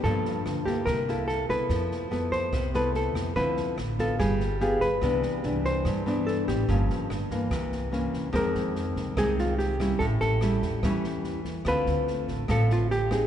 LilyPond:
<<
  \new Staff \with { instrumentName = "Hollow-body jazz guitar" } { \time 4/4 \key c \major \tempo 4 = 144 a'4 r8 g'8 bes'4 a'8 b'8~ | b'4. c''4 b'8 a'4 | b'4 r8 a'8 aes'4 g'8 b'8~ | b'4. c''4 r8 a'8 g'8~ |
g'2. r4 | bes'4. r8 aes'8 f'8 g'4 | a'8 a'2. r8 | b'4. r8 a'8 f'8 g'4 | }
  \new Staff \with { instrumentName = "Nylon-string guitar" } { \time 4/4 \key c \major << { <f bes d'>4. <bes e' a'>4 <bes e' a'>4 <b e' a'>8~ | <b e' a'>4 <b e' a'>4 r8 <b e' a'>4. | <f c' e'>4 r8 <b f'>4. <b f' aes'>8 r8 | <e b d'>4 <e d'>4. <e b d'>4. |
<f bes des'>4 r8 <e bes>4. <e bes des'>4 | <ees aes c'>2 <ees aes c'>4. <g des' e'>8~ | <g des' e'>4 <g cis' e'>4 <g cis' e'>4. r8 | <a c' f'>2 <a c' f'>4 r8 <c' ees' aes'>8 | } \\ { g,2 c2 | f2 c2 | d2 g2 | c2 g,2 |
g,2 c2 | f,2 c2 | a,2 e2 | d2 a,2 | } >> }
  \new Staff \with { instrumentName = "Upright bass" } { \clef bass \time 4/4 \key c \major g,8 r8 d,4 c,4. c,8 | f,8 r8 f,4 c,4. f,8 | d,8 r8 a,,4 g,,4. g,,8 | c,8 r8 c,4 g,4. a,,8 |
g,,8 r8 g,,4 c,4. c,8 | f,8 f,4 c,8 c,2 | a,,8 a,,4 e,8 e,2 | d,8 d,4 a,,8 a,,2 | }
  \new DrumStaff \with { instrumentName = "Drums" } \drummode { \time 4/4 <bd sn>8 sn8 <ss sn>8 <bd sn>8 <bd ss sn>8 sn8 sn8 <bd sn>8 | <bd ss sn>8 sn8 sn8 <bd sn>8 <bd ss sn>8 sn8 sn8 <bd ss sn>8 | <bd sn>8 sn8 <ss sn>8 <bd sn>8 <bd ss sn>8 sn8 sn8 <bd sn>8 | <bd ss sn>8 sn8 sn8 <bd sn>8 <bd ss sn>8 sn8 sn8 <bd ss sn>8 |
<bd sn>8 sn8 <ss sn>8 <bd sn>8 <bd ss sn>8 sn8 sn8 <bd sn>8 | <bd ss sn>8 sn8 sn8 <bd sn>8 <bd ss sn>8 sn8 sn8 <bd ss sn>8 | <bd sn>8 sn8 <ss sn>8 <bd sn>8 <bd ss sn>8 sn8 sn8 <bd sn>8 | <bd ss sn>8 sn8 sn8 <bd sn>8 <bd ss sn>8 sn8 sn8 <bd ss sn>8 | }
>>